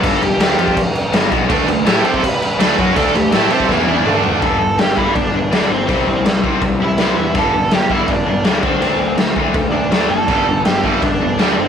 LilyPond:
<<
  \new Staff \with { instrumentName = "Lead electric guitar" } { \time 4/4 \key g \major \tempo 4 = 164 a'8 g'8 g'8 g'8 r2 | r4 g'8 a'8 b'2 | a'8 g'8 g'8 a'8 r8 <d' d''>4. | <a' a''>8 <a' a''>8 <g' g''>8 <e' e''>8 <d' d''>4 <d' d''>8 <c' c''>8~ |
<c' c''>4 r4. <e' e''>4. | <a' a''>4 <g' g''>8 <e' e''>8 <d' d''>4 <d' d''>8 <c' c''>8~ | <c' c''>4 r4. <d' d''>4 <a' a''>8~ | <a' a''>4 <g' g''>8 <e' e''>8 <d' d''>4 <d' d''>8 <c' c''>8 | }
  \new Staff \with { instrumentName = "Distorted electric guitar" } { \clef bass \time 4/4 \key g \major r1 | <d a d'>8 <d a>8 <a e' a'>8 <c' g' c''>8 r4 <d a d'>8 <fis cis' fis'>8 | <d a d'>8 <d a>8 <a e' a'>8 <c' g' c''>8 <e b e'>4 <d a d'>4 | r1 |
r1 | r1 | r1 | <g, d g>8 <g, d>8 <g, d>8 <g, d g>8 <g, d>8 <g, d>8 <g, d g>8 <g, d>8 | }
  \new Staff \with { instrumentName = "Distorted electric guitar" } { \clef bass \time 4/4 \key g \major <g, d g>8 <g, d>8 <d a d'>8 <f c' f'>8 r4 <g, d g>8 <b, fis b>8 | <d a d'>8 <d a>8 <a e' a'>8 <c' g' c''>8 r4 <d a d'>8 <fis cis' fis'>8 | <d a d'>8 <d a>8 <a e' a'>8 <c' g' c''>8 <e b e'>4 <d a d'>4 | <g, d g>8 <g, d>8 <g, d>8 <g, d g>8 <g, d>8 <g, d>8 <g, d g>8 <g, d>8 |
<c g c'>8 <c g>8 <c g>8 <c g c'>8 <c g>8 <c g>8 <c g c'>8 <c g>8 | <g, d g>8 <g, d>8 <g, d>8 <g, d g>8 <g, d>8 <g, d>8 <g, d g>8 <d a d'>8 | <d a d'>8 <d a>8 <d a>8 <d a d'>8 <d a>8 <d a>8 <d a d'>8 <d a>8 | <g, d g>8 <g, d>8 <g, d>8 <g, d g>8 <g, d>8 <g, d>8 <g, d g>8 <g, d>8 | }
  \new Staff \with { instrumentName = "Picked electric bass" } { \clef bass \time 4/4 \key g \major g,,8 g,,8 d,8 f,8 r4 g,,8 b,,8 | d,8 d,8 a,8 c8 r4 d,8 fis,8 | d,8 d,8 a,8 c8 e,4 d,4 | g,,8 g,,8 g,,4 g,,8 g,,8 d,8 g,,8 |
c,8 c,8 c,8 c,8 c,8 c,8 c,8 e,8 | g,,8 g,,8 g,,4 g,,8 g,,8 d,8 d,8 | d,8 d,8 d,8 d,8 d,8 d,8 d,8 fis,,8 | g,,8 g,,8 g,,4 g,,8 g,,8 d,8 g,,8 | }
  \new DrumStaff \with { instrumentName = "Drums" } \drummode { \time 4/4 <cymc bd>8 cymc8 <cymc sn>8 cymc16 bd16 <cymc bd>8 cymc8 <cymc sn>8 <cymc bd>8 | <cymc bd>8 cymc8 <cymc sn>8 cymc16 bd16 <cymc bd>8 cymc8 <cymc sn>8 <cymc bd>8 | <cymc bd>8 cymc8 <cymc sn>8 cymc16 bd16 <bd sn>8 tommh8 toml8 tomfh8 | <cymc bd>4 <cymc sn>8 bd8 <cymc bd>4 <cymc sn>4 |
<cymc bd>4 <cymc sn>8 bd8 <cymc bd>4 <cymc sn>4 | <cymc bd>4 <cymc sn>8 bd8 <cymc bd>4 <cymc sn>8 bd8 | cymc4 <cymc sn>8 bd8 <cymc bd>4 <cymc sn>4 | <cymc bd>4 <cymc sn>8 bd8 <cymc bd>4 <cymc sn>4 | }
>>